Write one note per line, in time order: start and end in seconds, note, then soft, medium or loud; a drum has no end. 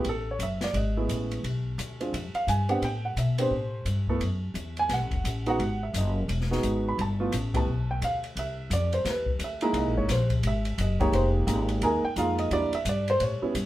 0.04 0.38 A1 medium
0.04 ride medium
0.09 0.28 A4 medium
0.31 0.42 C#5 medium
0.39 0.73 F#1 medium
0.39 kick soft
0.39 hi-hat pedal medium
0.39 ride medium
0.43 0.62 E5 medium
0.61 0.75 D5 medium
0.61 snare soft
0.61 ride soft
0.73 1.08 G#1 medium
0.73 1.08 D#5 medium
0.73 kick soft
0.73 ride medium
0.97 1.42 G#3 medium
0.97 1.42 A3 soft
0.97 1.42 B3 soft
0.97 1.42 E4 medium
1.09 1.43 A1 medium
1.09 kick soft
1.09 hi-hat pedal soft
1.09 ride medium
1.31 ride soft
1.43 1.77 B1 medium
1.43 kick soft
1.43 ride medium
1.78 2.12 D2 medium
1.78 kick soft
1.78 hi-hat pedal medium
1.78 ride medium
2.01 2.12 G#3 soft
2.01 2.12 C4 soft
2.01 2.12 D4 soft
2.01 2.12 F4 medium
2.01 ride soft
2.13 2.33 F2 medium
2.13 kick soft
2.13 ride medium
2.34 2.47 F5 medium
2.34 muted upright bass stroke soft
2.34 ride soft
2.47 2.81 G2 medium
2.47 2.69 G#5 medium
2.47 kick soft
2.47 hi-hat pedal medium
2.47 ride medium
2.69 2.81 B3 medium
2.69 2.81 C4 medium
2.69 2.81 D4 medium
2.69 2.81 G4 medium
2.69 2.83 F#5 medium
2.69 ride soft
2.82 3.15 A2 medium
2.82 3.04 G5 medium
2.82 kick soft
2.82 ride medium
3.05 3.17 F#5 medium
3.16 3.50 B2 medium
3.16 3.39 E5 medium
3.16 kick soft
3.16 hi-hat pedal medium
3.16 ride medium
3.38 3.50 B3 medium
3.38 3.50 C4 soft
3.38 3.50 D4 soft
3.38 3.51 G4 medium
3.38 3.84 C5 medium
3.38 ride medium
3.51 3.85 A2 medium
3.51 kick soft
3.85 4.19 G2 medium
3.85 kick soft
3.85 hi-hat pedal soft
3.85 ride medium
4.07 4.20 A3 medium
4.07 4.20 B3 medium
4.07 4.20 E4 medium
4.07 4.20 A4 medium
4.07 kick soft
4.20 4.54 F#2 medium
4.20 kick soft
4.20 ride soft
4.54 4.88 E2 medium
4.54 kick soft
4.54 hi-hat pedal soft
4.54 ride medium
4.77 4.91 G#5 medium
4.77 ride soft
4.89 5.01 B1 medium
4.89 kick soft
4.89 snare soft
4.89 ride medium
4.93 5.44 F#5 medium
5.01 5.12 A1 medium
5.11 5.24 F#1 medium
5.11 kick medium
5.11 ride soft
5.24 5.58 A1 medium
5.24 kick soft
5.24 hi-hat pedal medium
5.24 ride medium
5.46 5.58 G#3 medium
5.46 5.58 B3 medium
5.46 5.58 D#4 medium
5.46 5.58 F#4 medium
5.46 5.80 F#5 medium
5.46 ride soft
5.59 5.93 G#1 medium
5.59 kick soft
5.59 ride medium
5.83 5.95 E5 medium
5.93 6.27 F#1 medium
5.93 kick soft
5.93 hi-hat pedal medium
5.93 ride medium
5.98 6.17 D#5 medium
6.28 6.62 E1 medium
6.28 kick soft
6.28 ride medium
6.41 snare soft
6.50 6.95 G#3 medium
6.50 6.96 B3 medium
6.50 6.96 D#4 medium
6.50 6.96 F#4 medium
6.50 snare soft
6.63 6.97 G#1 medium
6.63 kick soft
6.63 hi-hat pedal medium
6.63 ride medium
6.88 6.99 B5 medium
6.98 7.31 G1 medium
6.98 7.52 A5 medium
6.98 kick soft
6.98 ride medium
7.20 7.31 A3 medium
7.20 7.31 B3 medium
7.20 7.32 E4 medium
7.20 7.32 F4 medium
7.32 7.66 A1 medium
7.32 kick soft
7.32 hi-hat pedal medium
7.32 ride medium
7.54 7.66 A3 medium
7.54 7.66 B3 soft
7.54 7.66 E4 soft
7.54 7.66 G4 medium
7.54 7.88 A5 medium
7.54 kick medium
7.54 ride medium
7.67 8.00 B1 medium
7.91 8.02 G5 medium
8.01 8.35 D2 medium
8.01 8.17 F5 medium
8.01 kick soft
8.01 hi-hat pedal soft
8.01 ride medium
8.24 ride soft
8.35 8.69 C2 medium
8.35 8.70 E5 medium
8.35 kick soft
8.35 ride medium
8.70 9.04 F2 medium
8.70 8.93 D5 medium
8.70 kick soft
8.70 hi-hat pedal medium
8.70 ride medium
8.93 9.06 C5 medium
8.93 ride soft
9.05 9.39 E2 medium
9.05 kick soft
9.05 snare soft
9.05 ride medium
9.10 9.28 B4 medium
9.26 kick medium
9.39 9.73 D2 medium
9.39 kick soft
9.39 hi-hat pedal soft
9.39 ride medium
9.44 9.74 E5 medium
9.61 10.07 G#3 medium
9.61 10.07 A#3 medium
9.61 10.07 D#4 medium
9.61 10.07 E4 medium
9.61 ride soft
9.73 9.86 C2 medium
9.73 kick soft
9.73 ride medium
9.78 9.97 D#5 medium
9.86 9.97 A#1 medium
9.97 10.08 G#1 medium
9.97 10.09 C#5 medium
10.08 10.42 A#1 loud
10.08 10.31 C5 medium
10.08 kick soft
10.08 snare soft
10.08 hi-hat pedal medium
10.08 ride medium
10.30 kick medium
10.30 ride soft
10.43 10.77 G#1 medium
10.43 kick soft
10.43 ride medium
10.47 10.78 E5 medium
10.65 ride soft
10.78 11.12 F#1 medium
10.78 11.01 D#5 medium
10.78 kick soft
10.78 hi-hat pedal medium
10.78 ride medium
11.00 11.45 G#3 medium
11.00 11.45 A#3 medium
11.00 11.45 D#4 medium
11.00 11.45 G4 medium
11.00 11.13 C#5 medium
11.00 kick medium
11.00 ride soft
11.12 11.46 F1 medium
11.12 11.27 C5 medium
11.12 ride medium
11.46 11.81 G#1 medium
11.46 11.80 G#3 medium
11.46 11.80 A#3 medium
11.46 11.80 D#4 medium
11.46 11.80 G4 medium
11.46 kick soft
11.46 hi-hat pedal soft
11.46 ride medium
11.69 ride soft
11.81 12.02 D#2 medium
11.81 12.01 G#3 medium
11.81 12.02 A#3 medium
11.81 12.02 D#4 medium
11.81 12.02 A#4 medium
11.81 12.04 G#5 medium
11.81 kick soft
11.81 ride medium
12.04 12.17 G5 medium
12.04 muted upright bass stroke soft
12.16 12.50 F2 medium
12.16 12.51 G#3 medium
12.16 12.51 A#3 medium
12.16 12.51 D#4 medium
12.16 12.52 F4 medium
12.16 12.39 F5 medium
12.16 kick soft
12.16 hi-hat pedal medium
12.16 ride medium
12.38 12.51 D#5 medium
12.38 ride soft
12.51 12.71 E2 medium
12.51 12.71 G3 medium
12.51 12.71 A#3 medium
12.51 12.71 D4 medium
12.51 12.71 E4 medium
12.51 12.73 D5 loud
12.51 kick soft
12.51 ride medium
12.72 12.86 E5 medium
12.72 muted upright bass stroke soft
12.72 ride medium
12.85 13.19 G2 medium
12.85 kick soft
12.85 hi-hat pedal medium
12.85 ride medium
12.89 13.08 D5 medium
13.08 13.21 C5 loud
13.08 ride soft
13.20 13.40 A2 medium
13.20 13.66 C#5 medium
13.20 kick soft
13.20 ride medium
13.42 13.54 G3 medium
13.42 13.54 B3 medium
13.42 13.54 C#4 medium
13.42 13.54 E4 medium
13.42 muted upright bass stroke soft
13.55 13.66 G2 medium
13.55 kick soft
13.55 hi-hat pedal medium
13.55 ride medium